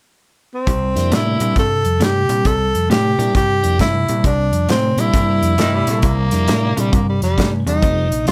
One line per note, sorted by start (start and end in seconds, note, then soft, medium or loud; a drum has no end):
0.54 1.16 C4 medium
0.67 0.93 C2 medium
0.67 1.09 C3 medium
0.67 1.09 G3 medium
0.67 kick medium
0.67 closed hi-hat medium
0.95 1.10 F2 medium
0.95 1.38 G3 medium
0.95 1.38 A#3 medium
0.95 1.38 D4 medium
0.95 1.38 E4 medium
0.95 snare soft
0.95 closed hi-hat medium
1.12 1.38 A2 medium
1.12 1.38 C3 medium
1.12 1.38 A3 medium
1.12 1.58 E4 medium
1.12 snare loud
1.12 closed hi-hat medium
1.39 1.55 A#2 medium
1.39 1.55 C3 medium
1.39 1.54 G3 medium
1.39 1.55 G3 medium
1.39 1.54 A#3 medium
1.39 1.54 D4 medium
1.39 1.54 E4 medium
1.39 closed hi-hat medium
1.56 1.82 G2 medium
1.56 1.98 C3 medium
1.56 1.98 G3 medium
1.56 2.05 A4 loud
1.56 kick loud
1.56 snare soft
1.56 closed hi-hat medium
1.85 1.99 F2 medium
1.85 closed hi-hat medium
2.00 2.27 G2 medium
2.00 2.27 C3 medium
2.00 2.27 A3 medium
2.00 2.48 G4 loud
2.00 snare loud
2.00 closed hi-hat medium
2.28 2.44 A#2 medium
2.28 2.44 C3 medium
2.28 2.44 G3 medium
2.28 closed hi-hat medium
2.45 2.72 C2 medium
2.45 2.87 C3 medium
2.45 2.87 G3 medium
2.45 2.90 A4 loud
2.45 kick medium
2.45 closed hi-hat medium
2.74 2.89 F2 medium
2.74 closed hi-hat medium
2.90 3.16 A2 medium
2.90 3.16 C3 medium
2.90 3.16 A3 medium
2.90 3.32 G4 medium
2.90 snare loud
2.90 closed hi-hat medium
3.18 3.33 A#2 medium
3.18 3.33 C3 medium
3.18 3.33 G3 medium
3.18 3.34 G3 medium
3.18 3.33 A#3 medium
3.18 3.33 D4 medium
3.18 3.34 E4 medium
3.18 closed hi-hat medium
3.35 3.61 G2 medium
3.35 3.77 C3 medium
3.35 3.77 G3 loud
3.35 3.77 G4 loud
3.35 kick loud
3.35 snare soft
3.35 closed hi-hat medium
3.63 3.78 F2 medium
3.63 3.78 G3 medium
3.63 3.78 A#3 medium
3.63 3.78 D4 medium
3.63 3.78 E4 medium
3.63 closed hi-hat medium
3.79 4.06 G2 medium
3.79 4.06 C3 medium
3.79 4.06 A3 medium
3.79 4.22 E4 medium
3.79 kick medium
3.79 snare loud
3.79 closed hi-hat medium
4.08 4.23 A#2 medium
4.08 4.23 C3 medium
4.08 4.23 G3 medium
4.08 closed hi-hat medium
4.24 4.50 C2 medium
4.24 4.66 C3 medium
4.24 4.66 G3 medium
4.24 4.67 D4 medium
4.24 kick loud
4.24 closed hi-hat medium
4.52 4.67 F2 medium
4.52 closed hi-hat medium
4.68 4.95 A2 medium
4.68 4.95 C3 medium
4.68 4.95 A3 medium
4.68 5.01 C4 medium
4.68 snare loud
4.68 closed hi-hat medium
4.97 5.12 A#2 medium
4.97 5.13 C3 medium
4.97 5.55 G3 medium
4.97 5.13 G3 medium
4.97 5.55 A#3 medium
4.97 5.55 D4 medium
4.97 5.55 E4 medium
4.97 6.33 E4 medium
4.97 closed hi-hat medium
5.13 5.40 G2 medium
5.13 5.56 C3 medium
5.13 5.56 G3 loud
5.13 kick loud
5.13 closed hi-hat medium
5.42 5.57 F2 medium
5.42 closed hi-hat medium
5.58 5.84 G2 medium
5.58 5.84 C3 medium
5.58 5.77 D#3 medium
5.58 5.85 A3 medium
5.58 snare medium
5.58 closed hi-hat medium
5.75 5.89 G3 medium
5.87 6.02 A#2 medium
5.87 6.02 C3 medium
5.87 6.02 G3 medium
5.87 6.81 A#3 medium
5.87 snare soft
5.87 closed hi-hat medium
6.02 6.29 C2 medium
6.02 6.45 C3 medium
6.02 6.45 G3 medium
6.02 kick loud
6.02 closed hi-hat medium
6.31 6.46 F2 medium
6.31 6.74 G3 medium
6.31 6.74 A#3 medium
6.31 6.74 D4 medium
6.31 6.74 E4 medium
6.31 snare soft
6.31 closed hi-hat medium
6.48 6.74 A2 medium
6.48 6.74 C3 medium
6.48 6.74 A3 medium
6.48 snare loud
6.48 closed hi-hat medium
6.77 6.91 A#2 medium
6.77 6.91 C3 medium
6.77 6.91 G3 medium
6.77 6.93 G3 medium
6.77 6.91 A#3 medium
6.77 6.91 D4 medium
6.77 6.91 E4 medium
6.77 closed hi-hat medium
6.92 7.19 G2 medium
6.92 7.34 C3 medium
6.92 7.34 G3 medium
6.92 7.08 A#3 medium
6.92 kick loud
6.92 closed hi-hat medium
7.09 7.22 G3 medium
7.21 7.36 F2 medium
7.21 7.51 G3 medium
7.21 snare soft
7.21 closed hi-hat medium
7.37 7.64 G2 medium
7.37 7.64 C3 medium
7.37 7.64 A3 medium
7.37 kick medium
7.37 snare loud
7.37 closed hi-hat medium
7.66 7.81 E2 medium
7.66 7.81 C3 medium
7.66 7.81 G3 medium
7.66 8.24 D#4 medium
7.66 closed hi-hat medium
7.82 8.08 F1 medium
7.82 8.24 F2 medium
7.82 8.24 C3 medium
7.82 8.08 G3 medium
7.82 8.08 A3 medium
7.82 8.08 C4 medium
7.82 8.08 D#4 medium
7.82 kick medium
7.82 closed hi-hat medium
8.11 8.25 A#1 medium
8.11 closed hi-hat medium
8.25 8.32 D2 medium
8.25 8.32 F2 medium
8.25 8.32 D3 medium
8.25 8.32 F4 medium
8.25 snare loud
8.25 closed hi-hat medium